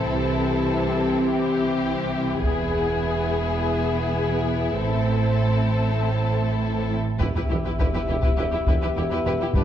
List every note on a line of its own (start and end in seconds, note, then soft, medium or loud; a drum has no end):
0.00 2.39 E3 soft
0.00 2.39 C4 soft
0.00 2.39 E4 soft
0.00 1.22 A4 soft
0.09 2.40 C2 soft
0.09 2.39 C3 soft
0.09 2.40 G4 soft
1.25 2.43 G4 soft
2.43 4.76 E1 medium
2.43 4.76 E2 soft
2.43 6.87 E3 soft
2.43 4.76 B3 soft
2.43 6.97 E4 soft
2.43 4.76 G#4 soft
2.43 taiko soft
4.80 6.97 A1 soft
4.80 6.96 A2 soft
4.80 6.97 C4 soft
4.80 6.96 A4 soft
4.80 6.87 C5 soft
7.20 7.26 E1 soft
7.20 7.27 E1 soft
7.20 7.26 E2 soft
7.20 9.64 B3 soft
7.20 7.27 E4 soft
7.20 7.26 G4 soft
7.20 9.64 G4 soft
7.20 7.26 B4 soft
7.20 9.52 E5 soft
7.20 taiko medium
7.20 sub drop soft
7.36 7.41 E2 soft
7.36 7.41 E4 soft
7.36 7.42 G4 soft
7.36 7.42 B4 soft
7.49 7.56 E1 soft
7.49 7.57 E1 soft
7.49 7.56 E2 soft
7.49 7.55 E4 soft
7.49 7.56 E4 soft
7.49 7.56 G4 soft
7.65 7.71 E2 soft
7.65 7.71 E4 soft
7.65 7.71 G4 soft
7.65 7.71 B4 soft
7.79 7.86 E1 medium
7.79 7.86 E1 soft
7.79 7.86 E2 medium
7.79 7.86 E4 medium
7.79 7.85 G4 soft
7.79 7.85 B4 soft
7.79 taiko medium
7.94 8.00 E2 soft
7.94 8.00 E4 soft
7.94 8.00 G4 soft
7.94 8.01 B4 soft
8.06 8.15 E1 soft
8.06 8.15 E2 soft
8.06 8.13 E4 soft
8.06 8.15 E4 soft
8.06 8.16 G4 soft
8.22 8.29 E2 medium
8.22 8.30 E4 soft
8.22 8.28 G4 medium
8.22 8.29 B4 soft
8.22 taiko medium
8.37 8.44 E1 soft
8.37 8.45 E1 soft
8.37 8.44 E2 soft
8.37 8.45 E4 soft
8.37 8.43 G4 soft
8.37 8.44 B4 soft
8.52 8.58 E2 soft
8.52 8.59 E4 soft
8.52 8.58 G4 soft
8.67 8.74 E1 soft
8.67 8.73 E2 medium
8.67 8.73 E4 soft
8.67 8.74 G4 medium
8.67 8.73 B4 soft
8.67 taiko medium
8.82 8.88 E2 soft
8.82 8.88 E4 soft
8.82 8.88 G4 soft
8.82 8.89 B4 soft
8.97 9.03 E1 soft
8.97 9.03 E2 soft
8.97 9.03 E4 soft
8.97 9.03 G4 soft
9.11 9.17 E2 soft
9.11 9.17 E4 medium
9.11 9.18 G4 medium
9.11 9.17 B4 medium
9.26 9.32 E1 soft
9.26 9.32 E2 soft
9.26 9.32 E4 soft
9.26 9.33 G4 soft
9.26 9.32 B4 soft
9.40 9.46 E2 soft
9.40 9.46 E4 soft
9.40 9.47 E4 soft
9.40 9.48 G4 soft
9.54 9.61 G1 medium
9.54 9.62 G1 soft
9.54 9.61 G2 medium
9.54 9.62 D4 soft
9.54 9.61 G4 medium
9.54 9.61 B4 soft
9.54 9.64 D5 soft
9.54 taiko medium